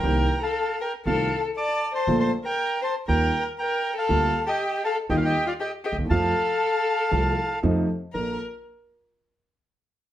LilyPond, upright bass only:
\new Staff \with { instrumentName = "Upright bass" } { \clef bass \time 4/4 \key bes \major \tempo 4 = 119 c,16. r4. r32 c,16. r4. r32 | bes,,16. r4. r32 ees,16. r4. r32 | d,16. r4. r32 ees,16. r4 r16 d,32 ees,32 e,32 | f,16. r4. r32 c,16. r8 r32 f,16. r8 r32 |
bes,,8 r2. r8 | }